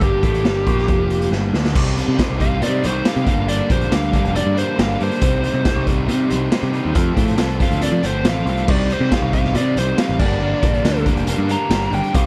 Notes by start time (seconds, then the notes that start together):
Already playing: G1 G2 G3
0.00 A#3 D4 G4, kick, closed hi-hat
0.22 A1 A2 A3, kick, closed hi-hat
0.34 closed hi-hat
0.44 G1 G2 G3, snare, closed hi-hat
0.66 A#1 A#2 A#3, kick, closed hi-hat
0.78 snare
0.88 F1 F2 F3, kick, closed hi-hat
1.10 closed hi-hat
1.21 closed hi-hat
1.31 G1 G2 G3, snare
1.53 D2 D3 D4, snare
1.65 snare
1.75 C2 C3 G3 C4 D#4 G4, kick, crash
1.96 G3 C4 D#4, closed hi-hat
2.08 C3
2.18 C3 G3 C4 D#4 G4, kick, snare, closed hi-hat
2.30 C2
2.39 C3 G3 C4 D#4 G4 F5, kick, closed hi-hat
2.60 C3 G3 C4 D#4 G4 D5, closed hi-hat
2.82 C2 C3 G3 C4 D#4, closed hi-hat
2.87 C5
3.04 C3 G3 C4 D#4 G4 F5, snare, closed hi-hat
3.16 C3, closed hi-hat
3.25 G1 G2 D3 G3 A#3 D4 G4 F5, kick, closed hi-hat
3.47 G2 D3 G3 A#3 D4 G4 D5, closed hi-hat
3.69 A#1 G3 A#3 D4 C5, kick, closed hi-hat
3.81 closed hi-hat
3.90 D2 D3 G3 A#3 D4 G4, snare, closed hi-hat
3.95 F5
4.02 closed hi-hat
4.11 D3 G3 A#3 D4 G4, kick, closed hi-hat
4.16 G2 F5
4.24 F1, closed hi-hat
4.33 D3 G3 A#3 D4 D5, closed hi-hat
4.37 G4
4.46 G2
4.55 G2 D3 G3 A#3 D4 C5, closed hi-hat
4.76 G1 D3 G3 A#3 D4, snare, closed hi-hat
4.81 G4 F5
4.98 G2 G3 A#3 D4 G4, closed hi-hat
5.03 C5
5.11 closed hi-hat
5.20 C2 C3 G3 C4 D#4 G4, kick, closed hi-hat
5.42 G3 C4 D#4, closed hi-hat
5.54 C3
5.64 C3 G3 C4 D#4, kick, snare, closed hi-hat
5.68 G4
5.76 C2
5.85 C3 G3 C4 D#4 G4, kick, closed hi-hat
6.07 C3 G3 C4 D#4, closed hi-hat
6.12 G4
6.28 C2 C3 G3 C4 D#4, closed hi-hat
6.50 C3 G3 C4 D#4, snare, closed hi-hat
6.54 G4
6.63 C3, closed hi-hat
6.72 G3 C4 D#4 G4, closed hi-hat
6.85 D#2
6.93 F2 C3 F3 A3 C4 F4, kick, closed hi-hat
6.97 A4
7.15 A2 F3 A3 C4, kick, closed hi-hat
7.28 closed hi-hat
7.37 C2 C3 F3 A3 C4 F4 A4, snare, closed hi-hat
7.49 closed hi-hat
7.59 C3 F3 A3 C4 F4 A4, kick, closed hi-hat
7.63 F2 F5
7.71 D2, closed hi-hat
7.80 C3 F3 A3 C4 F4 A4 D5, closed hi-hat
7.92 F3
8.02 G1 F2 C3 F3 A3 C4 C5, closed hi-hat
8.24 A1 C3 F3 A3 C4 F4 A4, snare, closed hi-hat
8.29 F5
8.45 C2 F3 A3 C4 F4 A4, closed hi-hat
8.50 F5
8.57 closed hi-hat
8.68 C2 C3 G3 C4 D#4 G4 D5, kick, crash
8.90 G3 C4 D#4 C5, closed hi-hat
9.00 C3
9.10 C3 G3 C4 D#4 G4 F5, kick, snare, closed hi-hat
9.22 C2
9.32 G3 C4 D#4 G4 F5, kick, closed hi-hat
9.36 C3
9.44 snare
9.54 C3 G3 C4 D#4 G4 D5, closed hi-hat
9.76 C2 C3 G3 C4 D#4 C5, closed hi-hat
9.97 C3 G3 C4 D#4 G4 F5, snare, closed hi-hat
10.09 A1, closed hi-hat
10.19 G1 G2 D3 G3 A#3 D4 A#4 D5, kick, crash
10.39 G2 D3 G3 A#4
10.43 G3 A#3 D4
10.62 A#1 G3 A#3 D4, kick, closed hi-hat
10.74 closed hi-hat
10.83 D2 D3 G3 A#3 D4 A#4, snare, closed hi-hat
10.96 closed hi-hat
11.05 G2 D3 G3 A#3 D4 A#4, kick, closed hi-hat
11.16 F1, closed hi-hat
11.27 D3 G3 A#3 D4 A#4, closed hi-hat
11.38 G2
11.48 G2 D3 G3 A#3 D4 A#5, closed hi-hat
11.69 G1 D3 G3 A#3 D4 A#4, snare, closed hi-hat
11.82 closed hi-hat
11.91 G1 G3 A#3 D4 A#4 G5, closed hi-hat
12.03 closed hi-hat
12.14 C2 C3 G3 C4 D#4 G4 F5, kick, closed hi-hat